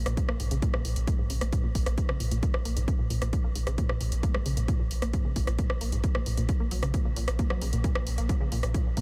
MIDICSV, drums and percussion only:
0, 0, Header, 1, 2, 480
1, 0, Start_track
1, 0, Key_signature, -5, "minor"
1, 0, Tempo, 451128
1, 1144, Time_signature, 4, 2, 24, 8
1, 9590, End_track
2, 0, Start_track
2, 0, Title_t, "Drums"
2, 64, Note_on_c, 9, 37, 87
2, 64, Note_on_c, 9, 42, 67
2, 170, Note_off_c, 9, 37, 0
2, 170, Note_off_c, 9, 42, 0
2, 183, Note_on_c, 9, 36, 112
2, 184, Note_on_c, 9, 42, 70
2, 289, Note_off_c, 9, 36, 0
2, 290, Note_off_c, 9, 42, 0
2, 304, Note_on_c, 9, 37, 85
2, 411, Note_off_c, 9, 37, 0
2, 424, Note_on_c, 9, 46, 100
2, 530, Note_off_c, 9, 46, 0
2, 544, Note_on_c, 9, 42, 67
2, 650, Note_off_c, 9, 42, 0
2, 663, Note_on_c, 9, 36, 120
2, 664, Note_on_c, 9, 42, 67
2, 770, Note_off_c, 9, 36, 0
2, 770, Note_off_c, 9, 42, 0
2, 784, Note_on_c, 9, 37, 90
2, 890, Note_off_c, 9, 37, 0
2, 903, Note_on_c, 9, 46, 94
2, 1009, Note_off_c, 9, 46, 0
2, 1023, Note_on_c, 9, 42, 71
2, 1130, Note_off_c, 9, 42, 0
2, 1143, Note_on_c, 9, 36, 123
2, 1143, Note_on_c, 9, 42, 66
2, 1250, Note_off_c, 9, 36, 0
2, 1250, Note_off_c, 9, 42, 0
2, 1383, Note_on_c, 9, 46, 104
2, 1489, Note_off_c, 9, 46, 0
2, 1504, Note_on_c, 9, 37, 82
2, 1504, Note_on_c, 9, 42, 74
2, 1610, Note_off_c, 9, 37, 0
2, 1610, Note_off_c, 9, 42, 0
2, 1623, Note_on_c, 9, 36, 118
2, 1623, Note_on_c, 9, 42, 71
2, 1729, Note_off_c, 9, 42, 0
2, 1730, Note_off_c, 9, 36, 0
2, 1863, Note_on_c, 9, 36, 62
2, 1863, Note_on_c, 9, 46, 93
2, 1969, Note_off_c, 9, 46, 0
2, 1970, Note_off_c, 9, 36, 0
2, 1983, Note_on_c, 9, 37, 91
2, 1983, Note_on_c, 9, 42, 70
2, 2090, Note_off_c, 9, 37, 0
2, 2090, Note_off_c, 9, 42, 0
2, 2103, Note_on_c, 9, 36, 113
2, 2103, Note_on_c, 9, 42, 69
2, 2209, Note_off_c, 9, 42, 0
2, 2210, Note_off_c, 9, 36, 0
2, 2223, Note_on_c, 9, 37, 83
2, 2330, Note_off_c, 9, 37, 0
2, 2343, Note_on_c, 9, 46, 106
2, 2450, Note_off_c, 9, 46, 0
2, 2463, Note_on_c, 9, 42, 66
2, 2569, Note_off_c, 9, 42, 0
2, 2583, Note_on_c, 9, 36, 127
2, 2583, Note_on_c, 9, 42, 64
2, 2689, Note_off_c, 9, 36, 0
2, 2689, Note_off_c, 9, 42, 0
2, 2703, Note_on_c, 9, 37, 90
2, 2810, Note_off_c, 9, 37, 0
2, 2823, Note_on_c, 9, 46, 98
2, 2930, Note_off_c, 9, 46, 0
2, 2944, Note_on_c, 9, 42, 68
2, 3050, Note_off_c, 9, 42, 0
2, 3063, Note_on_c, 9, 36, 124
2, 3063, Note_on_c, 9, 42, 64
2, 3169, Note_off_c, 9, 36, 0
2, 3170, Note_off_c, 9, 42, 0
2, 3302, Note_on_c, 9, 46, 103
2, 3409, Note_off_c, 9, 46, 0
2, 3423, Note_on_c, 9, 37, 84
2, 3423, Note_on_c, 9, 42, 67
2, 3530, Note_off_c, 9, 37, 0
2, 3530, Note_off_c, 9, 42, 0
2, 3542, Note_on_c, 9, 42, 66
2, 3543, Note_on_c, 9, 36, 125
2, 3649, Note_off_c, 9, 36, 0
2, 3649, Note_off_c, 9, 42, 0
2, 3782, Note_on_c, 9, 46, 98
2, 3889, Note_off_c, 9, 46, 0
2, 3903, Note_on_c, 9, 37, 90
2, 3903, Note_on_c, 9, 42, 66
2, 4010, Note_off_c, 9, 37, 0
2, 4010, Note_off_c, 9, 42, 0
2, 4022, Note_on_c, 9, 42, 70
2, 4023, Note_on_c, 9, 36, 119
2, 4129, Note_off_c, 9, 36, 0
2, 4129, Note_off_c, 9, 42, 0
2, 4143, Note_on_c, 9, 37, 84
2, 4249, Note_off_c, 9, 37, 0
2, 4262, Note_on_c, 9, 46, 104
2, 4369, Note_off_c, 9, 46, 0
2, 4383, Note_on_c, 9, 42, 69
2, 4490, Note_off_c, 9, 42, 0
2, 4503, Note_on_c, 9, 36, 127
2, 4503, Note_on_c, 9, 42, 66
2, 4609, Note_off_c, 9, 36, 0
2, 4610, Note_off_c, 9, 42, 0
2, 4623, Note_on_c, 9, 37, 95
2, 4729, Note_off_c, 9, 37, 0
2, 4742, Note_on_c, 9, 46, 104
2, 4849, Note_off_c, 9, 46, 0
2, 4863, Note_on_c, 9, 42, 67
2, 4970, Note_off_c, 9, 42, 0
2, 4983, Note_on_c, 9, 36, 122
2, 4983, Note_on_c, 9, 42, 62
2, 5089, Note_off_c, 9, 36, 0
2, 5090, Note_off_c, 9, 42, 0
2, 5223, Note_on_c, 9, 46, 101
2, 5329, Note_off_c, 9, 46, 0
2, 5343, Note_on_c, 9, 37, 92
2, 5343, Note_on_c, 9, 42, 68
2, 5449, Note_off_c, 9, 37, 0
2, 5449, Note_off_c, 9, 42, 0
2, 5463, Note_on_c, 9, 36, 119
2, 5463, Note_on_c, 9, 42, 64
2, 5569, Note_off_c, 9, 42, 0
2, 5570, Note_off_c, 9, 36, 0
2, 5703, Note_on_c, 9, 36, 64
2, 5703, Note_on_c, 9, 46, 93
2, 5809, Note_off_c, 9, 46, 0
2, 5810, Note_off_c, 9, 36, 0
2, 5824, Note_on_c, 9, 37, 92
2, 5824, Note_on_c, 9, 42, 66
2, 5930, Note_off_c, 9, 37, 0
2, 5930, Note_off_c, 9, 42, 0
2, 5943, Note_on_c, 9, 36, 120
2, 5943, Note_on_c, 9, 42, 65
2, 6049, Note_off_c, 9, 42, 0
2, 6050, Note_off_c, 9, 36, 0
2, 6063, Note_on_c, 9, 37, 92
2, 6170, Note_off_c, 9, 37, 0
2, 6182, Note_on_c, 9, 46, 107
2, 6289, Note_off_c, 9, 46, 0
2, 6303, Note_on_c, 9, 42, 64
2, 6409, Note_off_c, 9, 42, 0
2, 6423, Note_on_c, 9, 36, 123
2, 6423, Note_on_c, 9, 42, 60
2, 6529, Note_off_c, 9, 36, 0
2, 6529, Note_off_c, 9, 42, 0
2, 6543, Note_on_c, 9, 37, 92
2, 6649, Note_off_c, 9, 37, 0
2, 6662, Note_on_c, 9, 46, 95
2, 6769, Note_off_c, 9, 46, 0
2, 6783, Note_on_c, 9, 42, 65
2, 6889, Note_off_c, 9, 42, 0
2, 6902, Note_on_c, 9, 42, 62
2, 6903, Note_on_c, 9, 36, 117
2, 7008, Note_off_c, 9, 42, 0
2, 7009, Note_off_c, 9, 36, 0
2, 7142, Note_on_c, 9, 46, 100
2, 7249, Note_off_c, 9, 46, 0
2, 7263, Note_on_c, 9, 37, 89
2, 7263, Note_on_c, 9, 42, 64
2, 7370, Note_off_c, 9, 37, 0
2, 7370, Note_off_c, 9, 42, 0
2, 7383, Note_on_c, 9, 36, 118
2, 7383, Note_on_c, 9, 42, 66
2, 7489, Note_off_c, 9, 36, 0
2, 7489, Note_off_c, 9, 42, 0
2, 7623, Note_on_c, 9, 46, 91
2, 7729, Note_off_c, 9, 46, 0
2, 7743, Note_on_c, 9, 37, 97
2, 7743, Note_on_c, 9, 42, 67
2, 7850, Note_off_c, 9, 37, 0
2, 7850, Note_off_c, 9, 42, 0
2, 7863, Note_on_c, 9, 36, 115
2, 7863, Note_on_c, 9, 42, 61
2, 7969, Note_off_c, 9, 42, 0
2, 7970, Note_off_c, 9, 36, 0
2, 7983, Note_on_c, 9, 37, 94
2, 8089, Note_off_c, 9, 37, 0
2, 8103, Note_on_c, 9, 46, 106
2, 8209, Note_off_c, 9, 46, 0
2, 8223, Note_on_c, 9, 42, 61
2, 8330, Note_off_c, 9, 42, 0
2, 8343, Note_on_c, 9, 36, 121
2, 8343, Note_on_c, 9, 42, 63
2, 8449, Note_off_c, 9, 42, 0
2, 8450, Note_off_c, 9, 36, 0
2, 8463, Note_on_c, 9, 37, 98
2, 8569, Note_off_c, 9, 37, 0
2, 8583, Note_on_c, 9, 46, 99
2, 8689, Note_off_c, 9, 46, 0
2, 8703, Note_on_c, 9, 42, 64
2, 8810, Note_off_c, 9, 42, 0
2, 8823, Note_on_c, 9, 36, 113
2, 8824, Note_on_c, 9, 42, 60
2, 8930, Note_off_c, 9, 36, 0
2, 8930, Note_off_c, 9, 42, 0
2, 9064, Note_on_c, 9, 46, 96
2, 9170, Note_off_c, 9, 46, 0
2, 9184, Note_on_c, 9, 37, 86
2, 9184, Note_on_c, 9, 42, 65
2, 9290, Note_off_c, 9, 37, 0
2, 9290, Note_off_c, 9, 42, 0
2, 9304, Note_on_c, 9, 36, 114
2, 9304, Note_on_c, 9, 42, 66
2, 9410, Note_off_c, 9, 36, 0
2, 9410, Note_off_c, 9, 42, 0
2, 9543, Note_on_c, 9, 36, 58
2, 9543, Note_on_c, 9, 46, 89
2, 9590, Note_off_c, 9, 36, 0
2, 9590, Note_off_c, 9, 46, 0
2, 9590, End_track
0, 0, End_of_file